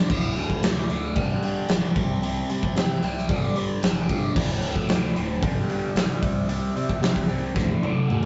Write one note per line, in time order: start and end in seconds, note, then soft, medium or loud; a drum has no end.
0.10 0.34 D1 medium
0.10 0.35 D2 medium
0.10 0.36 A2 loud
0.10 0.36 D3 loud
0.10 kick loud
0.10 crash loud
0.36 0.62 D2 medium
0.36 0.49 D2 medium
0.36 0.63 A2 medium
0.36 0.63 D3 medium
0.36 open hi-hat medium
0.50 kick medium
0.63 0.87 D2 medium
0.63 0.89 D2 medium
0.63 0.90 A2 medium
0.63 0.90 D3 medium
0.63 snare loud
0.63 open hi-hat medium
0.90 1.18 D2 medium
0.90 1.15 D2 medium
0.90 1.16 A2 medium
0.90 1.15 D3 medium
0.90 open hi-hat medium
1.16 1.31 G1 loud
1.16 1.42 G2 medium
1.16 1.42 D3 medium
1.16 1.43 G3 medium
1.16 kick loud
1.16 open hi-hat medium
1.30 1.65 G2 medium
1.43 1.69 G2 medium
1.43 1.69 D3 medium
1.43 1.69 G3 medium
1.43 open hi-hat medium
1.69 1.82 G1 medium
1.69 1.95 G2 medium
1.69 1.95 D3 medium
1.69 1.95 G3 loud
1.69 snare loud
1.69 open hi-hat medium
1.96 2.43 C2 medium
1.96 2.22 C3 loud
1.96 2.23 G3 loud
1.96 2.23 C4 loud
1.96 kick loud
1.96 open hi-hat medium
2.23 2.49 C3 loud
2.23 2.49 G3 loud
2.23 2.50 C4 loud
2.23 open hi-hat medium
2.50 2.61 C3 medium
2.50 2.75 C3 medium
2.50 2.76 G3 medium
2.50 2.76 C4 medium
2.50 open hi-hat medium
2.63 kick medium
2.76 3.00 C3 loud
2.76 3.02 C3 medium
2.76 3.03 G3 medium
2.76 3.03 C4 medium
2.76 snare loud
2.76 open hi-hat medium
3.02 3.31 C2 medium
3.02 3.28 C3 medium
3.02 3.29 G3 medium
3.02 3.29 C4 loud
3.02 open hi-hat medium
3.17 snare soft
3.29 3.44 G1 loud
3.29 3.55 G2 medium
3.29 3.56 D3 loud
3.29 3.56 G3 medium
3.29 kick loud
3.29 open hi-hat medium
3.43 3.78 G2 medium
3.56 3.82 G2 medium
3.56 3.82 D3 medium
3.56 3.82 G3 medium
3.56 open hi-hat medium
3.83 4.07 G1 medium
3.83 4.08 G2 medium
3.83 4.08 D3 medium
3.83 4.09 G3 loud
3.83 snare loud
3.83 open hi-hat medium
4.09 4.34 G2 medium
4.09 4.35 D3 medium
4.09 4.35 G3 medium
4.09 kick medium
4.09 open hi-hat medium
4.35 4.59 D1 medium
4.35 4.61 D2 loud
4.35 4.62 A2 loud
4.35 4.62 D3 loud
4.35 kick loud
4.35 crash loud
4.62 4.87 D2 medium
4.62 4.75 D2 medium
4.62 4.88 A2 medium
4.62 4.88 D3 medium
4.62 open hi-hat medium
4.76 kick medium
4.89 5.14 D2 medium
4.89 5.13 D2 loud
4.89 5.15 A2 medium
4.89 5.15 D3 medium
4.89 snare loud
4.89 open hi-hat medium
5.16 5.42 D1 medium
5.16 5.41 D2 medium
5.16 5.41 A2 medium
5.16 5.41 D3 loud
5.16 open hi-hat medium
5.42 5.58 G1 loud
5.42 5.68 G2 medium
5.42 5.68 D3 loud
5.42 5.69 G3 loud
5.42 kick loud
5.42 open hi-hat medium
5.56 5.91 G2 loud
5.69 5.95 G2 medium
5.69 5.95 D3 medium
5.69 5.96 G3 medium
5.69 open hi-hat medium
5.95 6.07 G1 medium
5.95 6.21 G2 medium
5.95 6.21 D3 medium
5.95 6.21 G3 loud
5.95 snare loud
5.95 open hi-hat medium
6.22 6.69 C2 medium
6.22 6.47 C3 loud
6.22 6.48 G3 medium
6.22 6.48 C4 loud
6.22 kick loud
6.22 open hi-hat medium
6.48 6.74 C3 loud
6.48 6.75 G3 loud
6.48 6.75 C4 loud
6.48 open hi-hat medium
6.76 7.00 C3 medium
6.76 6.88 C3 medium
6.76 7.01 G3 medium
6.76 7.01 C4 medium
6.76 open hi-hat medium
6.89 kick medium
7.01 7.27 C3 medium
7.01 7.26 C3 medium
7.01 7.28 G3 medium
7.01 7.28 C4 medium
7.01 snare loud
7.01 open hi-hat medium
7.16 kick medium
7.28 7.56 C2 medium
7.28 7.54 C3 medium
7.28 7.54 G3 medium
7.28 7.54 C4 medium
7.28 open hi-hat medium
7.54 7.81 D2 medium
7.54 7.71 D2 loud
7.54 7.82 A2 loud
7.54 7.82 D3 loud
7.54 kick loud
7.54 snare medium
7.69 7.81 D3 medium
7.82 8.08 D2 medium
7.82 8.06 F#2 medium
7.82 8.08 A2 medium
7.82 8.08 D3 medium
7.82 high tom medium
8.09 8.25 D2 medium
8.09 8.25 E2 medium
8.09 8.25 A2 medium
8.09 8.25 D3 medium
8.09 mid tom medium